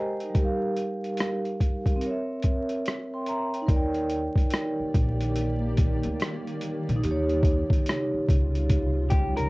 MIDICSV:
0, 0, Header, 1, 7, 480
1, 0, Start_track
1, 0, Key_signature, -3, "major"
1, 0, Tempo, 833333
1, 203, Time_signature, 4, 2, 24, 8
1, 5468, End_track
2, 0, Start_track
2, 0, Title_t, "Vibraphone"
2, 0, Program_c, 0, 11
2, 0, Control_c, 0, 64, 127
2, 0, Note_on_c, 0, 67, 55
2, 0, Note_on_c, 0, 70, 53
2, 0, Note_on_c, 0, 72, 66
2, 0, Note_on_c, 0, 75, 66
2, 0, Note_on_c, 0, 79, 64
2, 0, Note_on_c, 0, 80, 62
2, 0, Note_on_c, 0, 82, 60
2, 112, Note_off_c, 0, 72, 0
2, 114, Note_off_c, 0, 67, 0
2, 127, Note_off_c, 0, 70, 0
2, 127, Note_on_c, 0, 70, 54
2, 133, Note_on_c, 0, 63, 47
2, 171, Note_on_c, 0, 55, 67
2, 198, Note_on_c, 0, 67, 69
2, 210, Note_off_c, 0, 82, 0
2, 210, Control_c, 0, 64, 0
2, 211, Note_off_c, 0, 75, 0
2, 211, Note_off_c, 0, 80, 0
2, 213, Note_off_c, 0, 79, 0
2, 219, Note_off_c, 0, 70, 0
2, 226, Note_on_c, 0, 70, 64
2, 254, Note_on_c, 0, 77, 77
2, 297, Control_c, 0, 64, 127
2, 353, Note_off_c, 0, 63, 0
2, 1127, Note_off_c, 0, 55, 0
2, 1129, Note_on_c, 0, 60, 65
2, 1141, Note_off_c, 0, 67, 0
2, 1151, Note_off_c, 0, 70, 0
2, 1158, Note_on_c, 0, 70, 59
2, 1170, Note_off_c, 0, 77, 0
2, 1170, Control_c, 0, 64, 0
2, 1186, Note_on_c, 0, 73, 62
2, 1213, Note_on_c, 0, 76, 73
2, 1272, Control_c, 0, 64, 127
2, 1410, Note_off_c, 0, 73, 0
2, 1423, Note_off_c, 0, 76, 0
2, 1807, Note_on_c, 0, 84, 56
2, 1811, Note_on_c, 0, 79, 50
2, 1884, Note_off_c, 0, 84, 0
2, 1886, Note_off_c, 0, 79, 0
2, 1892, Note_on_c, 0, 82, 67
2, 1894, Note_on_c, 0, 76, 55
2, 2033, Note_off_c, 0, 82, 0
2, 2035, Note_off_c, 0, 76, 0
2, 2044, Note_on_c, 0, 79, 61
2, 2050, Note_on_c, 0, 73, 48
2, 2084, Note_on_c, 0, 63, 79
2, 2086, Note_off_c, 0, 60, 0
2, 2101, Note_off_c, 0, 70, 0
2, 2112, Note_on_c, 0, 70, 69
2, 2130, Control_c, 0, 64, 0
2, 2139, Note_on_c, 0, 74, 70
2, 2161, Note_off_c, 0, 79, 0
2, 2168, Note_on_c, 0, 79, 87
2, 2222, Control_c, 0, 64, 127
2, 2272, Note_off_c, 0, 73, 0
2, 4000, Note_off_c, 0, 63, 0
2, 4011, Note_on_c, 0, 63, 76
2, 4014, Note_off_c, 0, 70, 0
2, 4028, Note_off_c, 0, 74, 0
2, 4042, Note_off_c, 0, 79, 0
2, 4049, Control_c, 0, 64, 0
2, 4053, Note_on_c, 0, 67, 71
2, 4097, Note_on_c, 0, 73, 84
2, 4163, Control_c, 0, 64, 127
2, 5468, Note_off_c, 0, 63, 0
2, 5468, Note_off_c, 0, 67, 0
2, 5468, Note_off_c, 0, 73, 0
2, 5468, End_track
3, 0, Start_track
3, 0, Title_t, "Clean electric guitar"
3, 0, Program_c, 1, 27
3, 5243, Note_on_c, 1, 67, 78
3, 5389, Note_off_c, 1, 67, 0
3, 5395, Note_on_c, 1, 70, 80
3, 5468, Note_off_c, 1, 70, 0
3, 5468, End_track
4, 0, Start_track
4, 0, Title_t, "Ambient pad"
4, 0, Program_c, 2, 92
4, 2127, Note_on_c, 2, 58, 71
4, 2128, Note_on_c, 2, 51, 82
4, 2128, Note_on_c, 2, 74, 68
4, 2129, Note_on_c, 2, 67, 83
4, 4025, Note_off_c, 2, 58, 0
4, 4026, Note_off_c, 2, 51, 0
4, 4026, Note_off_c, 2, 74, 0
4, 4027, Note_off_c, 2, 67, 0
4, 4050, Note_on_c, 2, 49, 79
4, 4051, Note_on_c, 2, 48, 68
4, 4051, Note_on_c, 2, 55, 72
4, 4051, Note_on_c, 2, 65, 84
4, 5468, Note_off_c, 2, 48, 0
4, 5468, Note_off_c, 2, 49, 0
4, 5468, Note_off_c, 2, 55, 0
4, 5468, Note_off_c, 2, 65, 0
4, 5468, End_track
5, 0, Start_track
5, 0, Title_t, "Upright bass"
5, 0, Program_c, 3, 32
5, 2125, Note_on_c, 3, 39, 98
5, 2456, Note_off_c, 3, 39, 0
5, 2849, Note_on_c, 3, 34, 99
5, 3457, Note_off_c, 3, 34, 0
5, 3485, Note_on_c, 3, 38, 84
5, 3554, Note_off_c, 3, 38, 0
5, 3970, Note_on_c, 3, 34, 96
5, 4037, Note_off_c, 3, 34, 0
5, 4058, Note_on_c, 3, 39, 104
5, 4384, Note_off_c, 3, 39, 0
5, 4774, Note_on_c, 3, 37, 88
5, 5379, Note_off_c, 3, 37, 0
5, 5407, Note_on_c, 3, 37, 88
5, 5468, Note_off_c, 3, 37, 0
5, 5468, End_track
6, 0, Start_track
6, 0, Title_t, "Muted upright bass strokes"
6, 2764, Note_on_c, 9, 29, 46
6, 2821, Note_off_c, 9, 29, 0
6, 4689, Note_on_c, 9, 29, 49
6, 4746, Note_off_c, 9, 29, 0
6, 5468, End_track
7, 0, Start_track
7, 0, Title_t, "Drums"
7, 116, Note_on_c, 9, 42, 43
7, 174, Note_off_c, 9, 42, 0
7, 200, Note_on_c, 9, 36, 95
7, 200, Note_on_c, 9, 42, 61
7, 257, Note_off_c, 9, 42, 0
7, 258, Note_off_c, 9, 36, 0
7, 439, Note_on_c, 9, 42, 62
7, 497, Note_off_c, 9, 42, 0
7, 599, Note_on_c, 9, 42, 39
7, 657, Note_off_c, 9, 42, 0
7, 675, Note_on_c, 9, 42, 72
7, 693, Note_on_c, 9, 37, 110
7, 732, Note_off_c, 9, 42, 0
7, 751, Note_off_c, 9, 37, 0
7, 836, Note_on_c, 9, 42, 30
7, 894, Note_off_c, 9, 42, 0
7, 924, Note_on_c, 9, 36, 81
7, 926, Note_on_c, 9, 42, 59
7, 981, Note_off_c, 9, 36, 0
7, 984, Note_off_c, 9, 42, 0
7, 1070, Note_on_c, 9, 36, 77
7, 1074, Note_on_c, 9, 42, 47
7, 1127, Note_off_c, 9, 36, 0
7, 1131, Note_off_c, 9, 42, 0
7, 1159, Note_on_c, 9, 42, 73
7, 1216, Note_off_c, 9, 42, 0
7, 1396, Note_on_c, 9, 42, 69
7, 1404, Note_on_c, 9, 36, 84
7, 1453, Note_off_c, 9, 42, 0
7, 1462, Note_off_c, 9, 36, 0
7, 1549, Note_on_c, 9, 42, 49
7, 1607, Note_off_c, 9, 42, 0
7, 1645, Note_on_c, 9, 42, 83
7, 1658, Note_on_c, 9, 37, 96
7, 1702, Note_off_c, 9, 42, 0
7, 1716, Note_off_c, 9, 37, 0
7, 1880, Note_on_c, 9, 42, 57
7, 1937, Note_off_c, 9, 42, 0
7, 2038, Note_on_c, 9, 42, 43
7, 2096, Note_off_c, 9, 42, 0
7, 2122, Note_on_c, 9, 36, 114
7, 2124, Note_on_c, 9, 42, 70
7, 2180, Note_off_c, 9, 36, 0
7, 2182, Note_off_c, 9, 42, 0
7, 2272, Note_on_c, 9, 42, 32
7, 2330, Note_off_c, 9, 42, 0
7, 2359, Note_on_c, 9, 42, 66
7, 2417, Note_off_c, 9, 42, 0
7, 2509, Note_on_c, 9, 36, 84
7, 2520, Note_on_c, 9, 42, 47
7, 2566, Note_off_c, 9, 36, 0
7, 2578, Note_off_c, 9, 42, 0
7, 2594, Note_on_c, 9, 42, 76
7, 2612, Note_on_c, 9, 37, 113
7, 2651, Note_off_c, 9, 42, 0
7, 2670, Note_off_c, 9, 37, 0
7, 2847, Note_on_c, 9, 36, 92
7, 2848, Note_on_c, 9, 42, 69
7, 2904, Note_off_c, 9, 36, 0
7, 2906, Note_off_c, 9, 42, 0
7, 2998, Note_on_c, 9, 42, 53
7, 3055, Note_off_c, 9, 42, 0
7, 3084, Note_on_c, 9, 42, 84
7, 3142, Note_off_c, 9, 42, 0
7, 3325, Note_on_c, 9, 42, 78
7, 3330, Note_on_c, 9, 36, 88
7, 3382, Note_off_c, 9, 42, 0
7, 3388, Note_off_c, 9, 36, 0
7, 3476, Note_on_c, 9, 42, 54
7, 3533, Note_off_c, 9, 42, 0
7, 3570, Note_on_c, 9, 42, 93
7, 3584, Note_on_c, 9, 37, 108
7, 3628, Note_off_c, 9, 42, 0
7, 3641, Note_off_c, 9, 37, 0
7, 3729, Note_on_c, 9, 42, 33
7, 3786, Note_off_c, 9, 42, 0
7, 3808, Note_on_c, 9, 42, 67
7, 3866, Note_off_c, 9, 42, 0
7, 3970, Note_on_c, 9, 42, 47
7, 4028, Note_off_c, 9, 42, 0
7, 4053, Note_on_c, 9, 42, 73
7, 4111, Note_off_c, 9, 42, 0
7, 4202, Note_on_c, 9, 42, 32
7, 4260, Note_off_c, 9, 42, 0
7, 4280, Note_on_c, 9, 36, 96
7, 4290, Note_on_c, 9, 42, 69
7, 4338, Note_off_c, 9, 36, 0
7, 4348, Note_off_c, 9, 42, 0
7, 4435, Note_on_c, 9, 36, 91
7, 4452, Note_on_c, 9, 42, 44
7, 4493, Note_off_c, 9, 36, 0
7, 4510, Note_off_c, 9, 42, 0
7, 4528, Note_on_c, 9, 42, 84
7, 4546, Note_on_c, 9, 37, 120
7, 4585, Note_off_c, 9, 42, 0
7, 4604, Note_off_c, 9, 37, 0
7, 4772, Note_on_c, 9, 36, 88
7, 4780, Note_on_c, 9, 42, 70
7, 4830, Note_off_c, 9, 36, 0
7, 4837, Note_off_c, 9, 42, 0
7, 4926, Note_on_c, 9, 42, 51
7, 4983, Note_off_c, 9, 42, 0
7, 5009, Note_on_c, 9, 42, 84
7, 5010, Note_on_c, 9, 36, 91
7, 5066, Note_off_c, 9, 42, 0
7, 5068, Note_off_c, 9, 36, 0
7, 5244, Note_on_c, 9, 42, 79
7, 5251, Note_on_c, 9, 36, 91
7, 5301, Note_off_c, 9, 42, 0
7, 5308, Note_off_c, 9, 36, 0
7, 5397, Note_on_c, 9, 42, 53
7, 5454, Note_off_c, 9, 42, 0
7, 5468, End_track
0, 0, End_of_file